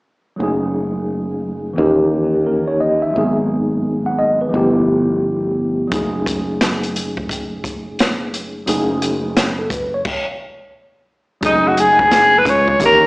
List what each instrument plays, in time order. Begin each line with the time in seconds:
0.36 fretless electric bass F#1, tine electric piano F#3 A3 C#4
0.41 tine electric piano D#4 G#4
1.73 tine electric piano E3 A#3 C#4
1.78 fretless electric bass D#2, tine electric piano D#4 G4
2.47 tine electric piano A#4
2.68 tine electric piano C#5
2.80 tine electric piano D#5
3.02 tine electric piano E5
3.11 tine electric piano F#3 A#3 B3
3.16 fretless electric bass G#1, tine electric piano D#4 G#4
4.06 tine electric piano F#5
4.19 tine electric piano D#5
4.41 tine electric piano B4
4.49 tine electric piano F3 A3 B3
4.54 fretless electric bass G1, tine electric piano E4 G4
5.87 tine electric piano F#3 A3
5.91 fretless electric bass F#1, tine electric piano C#4 D#4 G#4, kick, closed hi-hat
6.26 kick, closed hi-hat
6.61 snare, closed hi-hat
6.83 closed hi-hat
6.96 closed hi-hat
7.17 kick
7.29 kick, closed hi-hat
7.64 kick, closed hi-hat
7.99 snare, closed hi-hat
8.34 closed hi-hat
8.66 fretless electric bass F#1, tine electric piano F#3 A3 C#4 D#4 G#4, closed hi-hat
9.02 closed hi-hat
9.37 snare, closed hi-hat
9.59 tine electric piano A4
9.70 tine electric piano B4, kick, closed hi-hat
9.94 tine electric piano C#5
10.05 kick, crash
11.41 fretless electric bass F#1, tine electric piano F#3 G#3 C#4 D#4 G#4, alto saxophone D#4, kick, closed hi-hat
11.48 tine electric piano A3
11.67 alto saxophone F#4
11.77 alto saxophone G#4, closed hi-hat
11.99 kick
12.11 snare, closed hi-hat
12.38 alto saxophone B4
12.45 fretless electric bass C#2, alto saxophone C#5, kick, closed hi-hat
12.68 kick
12.79 fretless electric bass D#2, tine electric piano E3 A#3 C#4 D#4 G4, kick, closed hi-hat
12.85 alto saxophone A#4